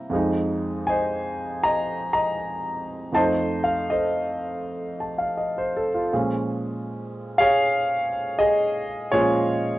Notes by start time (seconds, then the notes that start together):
Already playing: C3 G3 A#3 E4 E5 G5 A#5
0.10 F2 F3 G#3
0.15 D#4
0.87 C5 D#5 G#5
1.63 D#5 A#5
2.13 D#5 A#5
3.12 F2 F3 A3 D#4 C5 D#5 A5
3.64 F5
3.90 A4 C5 D#5
5.00 A5
5.18 F5
5.37 D#5
5.58 C5
5.76 A4
5.95 F4
6.13 A#2 F3 G#3 C#4
7.38 G#4 C#5 F5
8.39 G#4 D#5
9.12 A#2 F3 G#3 C#4 F4 G#4 C#5